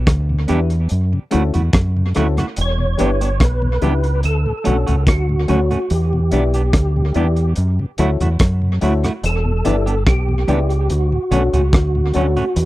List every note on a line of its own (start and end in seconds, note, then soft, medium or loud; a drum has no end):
0.07 0.47 D2 medium
0.07 kick loud
0.07 cross-stick loud
0.07 closed hi-hat medium
0.29 0.36 E2 medium
0.29 0.36 B2 medium
0.47 0.89 E2 medium
0.47 0.57 E3 medium
0.47 0.57 G3 medium
0.47 0.59 B3 medium
0.47 0.65 D4 medium
0.47 0.59 D4 loud
0.47 0.57 D4 medium
0.47 0.66 E4 medium
0.47 0.66 G4 medium
0.47 0.59 G4 medium
0.47 0.66 B4 medium
0.47 closed hi-hat medium
0.70 closed hi-hat soft
0.89 1.12 F#2 medium
0.89 closed hi-hat medium
1.13 1.19 F#2 medium
1.13 1.20 C#3 medium
1.31 1.54 D2 medium
1.31 1.40 F#3 medium
1.31 1.42 A3 medium
1.31 1.40 A3 medium
1.31 1.49 C#4 medium
1.31 1.49 E4 medium
1.31 1.42 E4 medium
1.31 1.40 E4 medium
1.31 1.49 F#4 medium
1.31 1.42 F#4 medium
1.31 1.49 A4 medium
1.31 closed hi-hat medium
1.54 1.73 E2 medium
1.54 1.61 F#2 medium
1.54 1.61 C#3 medium
1.54 1.62 A3 soft
1.54 1.62 E4 medium
1.54 1.61 F#4 medium
1.54 1.62 F#4 soft
1.54 1.62 A4 soft
1.54 closed hi-hat medium
1.73 2.13 F#2 medium
1.73 kick loud
1.73 cross-stick loud
1.73 closed hi-hat loud
1.97 2.03 F#2 medium
1.97 2.03 C#3 medium
2.15 2.37 D2 medium
2.15 2.23 F#3 medium
2.15 2.26 A3 medium
2.15 2.23 A3 medium
2.15 2.32 C#4 medium
2.15 2.32 E4 medium
2.15 2.23 E4 medium
2.15 2.26 E4 medium
2.15 2.33 F#4 medium
2.15 2.26 F#4 medium
2.15 2.33 A4 medium
2.15 cross-stick medium
2.15 closed hi-hat medium
2.37 2.44 F#2 medium
2.37 2.44 C#3 medium
2.37 2.46 A3 soft
2.37 2.45 E4 medium
2.37 2.45 F#4 medium
2.37 cross-stick medium
2.37 closed hi-hat soft
2.56 2.97 E1 medium
2.56 closed hi-hat medium
2.61 3.45 C#5 medium
2.78 2.86 E2 medium
2.78 2.86 B2 medium
2.97 3.39 G1 medium
2.97 3.06 E3 medium
2.97 3.06 G3 medium
2.97 3.09 B3 medium
2.97 3.15 D4 medium
2.97 3.07 D4 medium
2.97 3.10 D4 medium
2.97 3.16 E4 medium
2.97 3.16 G4 medium
2.97 3.10 G4 loud
2.97 3.16 B4 loud
2.97 closed hi-hat medium
3.21 3.29 B3 soft
3.21 3.28 D4 medium
3.21 3.28 G4 medium
3.21 closed hi-hat soft
3.40 3.80 B1 medium
3.40 4.21 B4 medium
3.40 kick loud
3.40 cross-stick loud
3.40 closed hi-hat medium
3.62 3.69 E2 medium
3.62 3.69 B2 medium
3.81 4.22 C#2 medium
3.81 3.90 E3 medium
3.81 3.90 G3 medium
3.81 3.92 B3 medium
3.81 3.99 D4 medium
3.81 3.90 D4 medium
3.81 3.93 D4 medium
3.81 3.99 E4 medium
3.81 3.99 G4 medium
3.81 3.93 G4 medium
3.81 3.99 B4 medium
3.81 closed hi-hat medium
4.04 closed hi-hat medium
4.23 4.45 D2 medium
4.23 5.04 A4 medium
4.23 closed hi-hat medium
4.46 4.53 D2 medium
4.46 4.53 A2 medium
4.64 4.87 B1 medium
4.64 4.74 D3 medium
4.64 4.74 F#3 medium
4.64 4.75 A3 medium
4.64 4.76 C#4 medium
4.64 4.74 C#4 medium
4.64 4.82 D4 medium
4.64 4.82 F#4 medium
4.64 4.76 F#4 medium
4.64 4.82 A4 medium
4.64 4.82 C#5 medium
4.64 closed hi-hat medium
4.87 5.07 C#2 medium
4.87 4.95 D2 medium
4.87 4.95 A2 medium
4.87 4.95 A3 soft
4.87 4.94 C#4 medium
4.87 4.94 F#4 medium
4.87 4.95 A4 soft
4.87 4.95 C#5 soft
4.87 closed hi-hat medium
5.07 5.46 D2 medium
5.07 5.94 F#4 medium
5.07 kick loud
5.07 cross-stick loud
5.07 closed hi-hat loud
5.29 5.36 D2 medium
5.29 5.36 A2 medium
5.48 5.70 D2 medium
5.48 5.56 D3 medium
5.48 5.56 F#3 medium
5.48 5.59 A3 medium
5.48 5.59 C#4 medium
5.48 5.56 C#4 medium
5.48 5.65 D4 medium
5.48 5.65 F#4 medium
5.48 5.59 F#4 medium
5.48 5.66 A4 medium
5.48 5.66 C#5 loud
5.48 closed hi-hat medium
5.71 5.78 D2 medium
5.71 5.78 A2 medium
5.71 5.78 A3 medium
5.71 5.78 C#4 medium
5.71 5.78 F#4 medium
5.71 closed hi-hat soft
5.90 6.30 E2 medium
5.90 7.53 G4 medium
5.90 closed hi-hat medium
6.13 6.20 E2 medium
6.13 6.20 B2 medium
6.31 6.72 B1 loud
6.31 6.40 E3 medium
6.31 6.40 G3 medium
6.31 6.42 B3 medium
6.31 6.40 D4 medium
6.31 6.43 D4 medium
6.31 6.49 E4 medium
6.31 6.49 G4 medium
6.31 6.43 G4 medium
6.31 6.49 B4 medium
6.31 6.49 D5 loud
6.31 closed hi-hat medium
6.54 6.62 B3 soft
6.54 6.62 D4 soft
6.54 6.61 G4 medium
6.54 closed hi-hat soft
6.73 7.13 D2 medium
6.73 kick loud
6.73 cross-stick loud
6.73 closed hi-hat medium
6.96 7.03 E2 medium
6.96 7.03 B2 medium
7.14 7.55 E2 medium
7.14 7.23 E3 medium
7.14 7.23 G3 medium
7.14 7.26 B3 medium
7.14 7.26 D4 medium
7.14 7.24 D4 medium
7.14 7.32 E4 medium
7.14 7.32 G4 medium
7.14 7.26 G4 medium
7.14 7.32 B4 medium
7.14 7.32 D5 loud
7.14 closed hi-hat medium
7.36 closed hi-hat medium
7.56 7.78 F#2 medium
7.56 closed hi-hat medium
7.79 7.86 F#2 medium
7.79 7.86 C#3 medium
7.98 8.19 D2 medium
7.98 8.06 F#3 medium
7.98 8.06 A3 medium
7.98 8.09 A3 medium
7.98 8.15 E4 medium
7.98 8.09 E4 medium
7.98 8.07 E4 medium
7.98 8.16 F#4 medium
7.98 8.09 F#4 medium
7.98 8.16 A4 medium
7.98 8.16 C#5 medium
7.98 closed hi-hat medium
8.20 8.39 E2 medium
8.20 8.28 F#2 medium
8.20 8.27 C#3 medium
8.20 8.28 A3 soft
8.20 8.28 E4 medium
8.20 8.28 F#4 medium
8.20 8.28 A4 soft
8.20 8.28 C#5 soft
8.20 closed hi-hat medium
8.39 8.80 F#2 medium
8.39 kick loud
8.39 cross-stick loud
8.39 closed hi-hat loud
8.62 8.69 F#2 medium
8.62 8.69 C#3 medium
8.81 9.03 D2 medium
8.81 8.89 F#3 medium
8.81 8.90 A3 medium
8.81 8.92 A3 medium
8.81 8.99 E4 medium
8.81 8.90 E4 medium
8.81 8.92 E4 medium
8.81 8.99 F#4 medium
8.81 8.93 F#4 medium
8.81 8.99 A4 medium
8.81 8.99 C#5 loud
8.81 closed hi-hat medium
9.04 9.11 F#2 medium
9.04 9.10 C#3 medium
9.04 9.12 A3 medium
9.04 9.12 E4 medium
9.04 9.11 F#4 medium
9.04 cross-stick medium
9.04 closed hi-hat soft
9.24 9.63 E1 loud
9.24 10.04 A4 loud
9.24 closed hi-hat medium
9.45 9.52 E2 medium
9.45 9.52 B2 medium
9.64 10.05 G1 medium
9.64 9.73 E3 medium
9.64 9.73 G3 medium
9.64 9.75 B3 medium
9.64 9.73 D4 medium
9.64 9.75 D4 medium
9.64 9.82 E4 medium
9.64 9.82 G4 medium
9.64 9.76 G4 medium
9.64 9.82 B4 medium
9.64 9.82 D5 loud
9.64 closed hi-hat medium
9.86 9.94 B3 medium
9.86 9.94 D4 medium
9.86 9.94 G4 medium
9.86 closed hi-hat soft
10.07 10.46 B1 medium
10.07 10.93 G4 medium
10.07 kick loud
10.07 cross-stick loud
10.07 closed hi-hat medium
10.29 10.35 E2 medium
10.29 10.35 B2 medium
10.47 10.88 C#2 medium
10.47 10.55 E3 medium
10.47 10.55 G3 medium
10.47 10.58 B3 medium
10.47 10.56 D4 medium
10.47 10.58 D4 medium
10.47 10.65 E4 medium
10.47 10.65 G4 medium
10.47 10.59 G4 medium
10.47 10.65 B4 medium
10.47 10.66 D5 loud
10.47 closed hi-hat medium
10.70 closed hi-hat medium
10.90 11.11 D2 medium
10.90 12.65 F#4 medium
10.90 closed hi-hat medium
11.12 11.19 D2 medium
11.12 11.19 A2 medium
11.31 11.52 B1 medium
11.31 11.39 D3 medium
11.31 11.39 F#3 medium
11.31 11.42 A3 medium
11.31 11.39 C#4 medium
11.31 11.42 C#4 medium
11.31 11.48 D4 medium
11.31 11.49 F#4 medium
11.31 11.42 F#4 medium
11.31 11.49 A4 medium
11.31 11.49 C#5 medium
11.31 closed hi-hat medium
11.53 11.72 C#2 medium
11.53 11.60 D2 medium
11.53 11.60 A2 medium
11.53 11.61 A3 medium
11.53 11.61 C#4 medium
11.53 11.61 F#4 medium
11.53 11.61 A4 soft
11.53 11.61 C#5 soft
11.53 closed hi-hat soft
11.73 12.13 D2 medium
11.73 kick loud
11.73 cross-stick loud
11.73 closed hi-hat medium
11.95 12.02 D2 medium
11.95 12.02 A2 medium
12.14 12.36 D2 medium
12.14 12.22 D3 medium
12.14 12.22 F#3 medium
12.14 12.25 A3 medium
12.14 12.22 C#4 medium
12.14 12.26 C#4 medium
12.14 12.31 D4 medium
12.14 12.31 F#4 medium
12.14 12.26 F#4 medium
12.14 12.32 A4 medium
12.14 12.32 C#5 loud
12.14 closed hi-hat medium
12.37 12.44 D2 medium
12.37 12.43 A2 medium
12.37 12.44 A3 medium
12.37 12.44 C#4 medium
12.37 12.44 F#4 medium
12.37 closed hi-hat soft
12.56 12.65 E2 loud
12.56 closed hi-hat medium